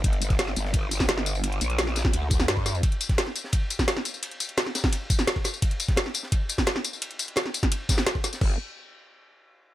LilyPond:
<<
  \new Staff \with { instrumentName = "Wobble bass" } { \clef bass \time 4/4 \key g \minor \tempo 4 = 172 g,,4. g,,4. g,,4~ | g,,8 bes,,4. d,4 g,4 | r1 | r1 |
r1 | r1 | g,,8 r2. r8 | }
  \new DrumStaff \with { instrumentName = "Drums" } \drummode { \time 4/4 <hh bd cymr>16 hh16 <hh cymr tamb>16 <hh bd sn>16 <hh cymr sn>16 sn16 <hh cymr tamb>16 sn16 <hh bd cymr>8 <hh cymr tamb>16 <bd sn tamb>16 <hh cymr sn>16 sn16 <hh cymr tamb>16 tamb16 | <hh cymr>16 hh16 <hh cymr tamb>16 hh16 <hh cymr sn>16 <cymr sn>16 <hh cymr sn tamb>16 <bd sn>16 <hh cymr>8 <hh bd cymr tamb>16 <sn tamb>16 <hh cymr sn>16 bd16 <hh cymr sn tamb>16 tamb16 | <hh bd cymr>16 hh16 <hh cymr tamb>16 <hh bd sn>16 <hh cymr sn>16 sn16 <hh cymr tamb>16 sn16 <hh bd cymr>8 <hh cymr tamb>16 <bd sn tamb>16 <hh cymr sn>16 sn16 <hh cymr tamb>16 tamb16 | <hh cymr>16 hh16 <hh cymr tamb>16 hh16 <hh cymr sn>16 <cymr sn>16 <hh cymr sn tamb>16 <bd cymr sn>16 <hh cymr>8 <hh bd cymr tamb>16 <sn tamb>16 <hh cymr sn>16 bd16 <hh cymr sn tamb>16 tamb16 |
<hh bd cymr>16 hh16 <hh cymr tamb>16 <hh bd sn>16 <hh cymr sn>16 sn16 <hh cymr tamb>16 sn16 <hh bd cymr>8 <hh cymr tamb>16 <bd sn tamb>16 <hh cymr sn>16 sn16 <hh cymr tamb>16 tamb16 | <hh cymr>16 hh16 <hh cymr tamb>16 hh16 <hh cymr sn>16 <cymr sn>16 <hh cymr tamb>16 <hh bd sn>16 <hh cymr>8 <hh bd cymr sn tamb>16 <cymr sn>16 <hh cymr sn>16 bd16 <hh cymr sn tamb>16 <hh sn tamb>16 | <cymc bd>4 r4 r4 r4 | }
>>